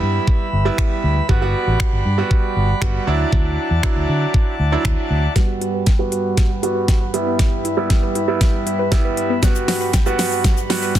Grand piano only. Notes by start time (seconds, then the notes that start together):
Already playing: G3 B3 E4
0.65 G3 B3 E4
1.29 G3 B3 F#4
1.42 G3 B3 F#4
2.18 G3 B3 F#4
2.81 G3 B3 F#4
3.07 F#3 D4 E4
3.83 F#3 D4 E4
4.72 F#3 D4 E4
5.36 G3 B3 F#4
5.99 G3 B3 F#4
6.63 G3 B3 F#4
7.14 G3 B3 E4
7.77 G3 B3 E4
8.28 G3 B3 E4
8.92 G3 B3 E4
9.43 G3 B3 F#4
10.06 G3 B3 F#4
10.70 G3 B3 F#4